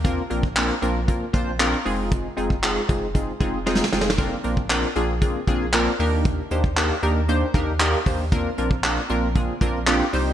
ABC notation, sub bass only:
X:1
M:4/4
L:1/8
Q:1/4=116
K:Bbmix
V:1 name="Sub bass" clef=bass
E,, B,,,2 B,,,2 B,,,2 F,,,- | F,,, F,,,2 F,,,2 F,,,2 F,,,- | F,,, B,,,2 B,,,2 B,,,2 E,,- | E,, E,,2 E,,2 E,,2 E,,- |
E,, B,,,2 B,,,2 B,,,2 C,, |]